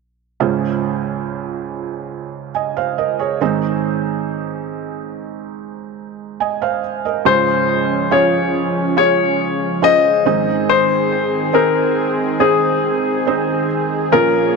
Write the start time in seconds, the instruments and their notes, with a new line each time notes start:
0.40 felt piano C#2 G#2 C#4 F4 G#4 C5
2.55 felt piano D#5 G#5
2.77 felt piano C5 F5
2.98 felt piano A#4 D#5
3.19 felt piano G#4 C#5
3.41 felt piano G#2 D#3 C4 D#4 G#4 C5
6.40 felt piano D#5 G#5
6.62 felt piano C5 F5
7.05 felt piano A#4 D#5
7.24 felt piano C#2 G#2 C#4 F4 G#4 C5, analog synth pad F3 C#4 G#4, grand piano C5
8.11 felt piano C#4 F4 G#4 C#5, grand piano C#5
8.96 felt piano C#4 F4 G#4 C#5, grand piano C#5
9.82 felt piano C#4 F4 G#4 C5, grand piano D#5
10.25 felt piano G#2 D#3 C4 D#4 G#4 C5, analog synth pad D#3 C4
10.70 grand piano C5
11.53 felt piano C4 D#4 G#4 C5, grand piano A#4
12.40 felt piano C4 D#4 G#4 C5, grand piano G#4
13.27 felt piano C4 D#4 G#4 C5
14.10 felt piano A#2 F3 C#4 F4 G#4 A#4, analog synth pad F3 A#3 C#5, grand piano A#4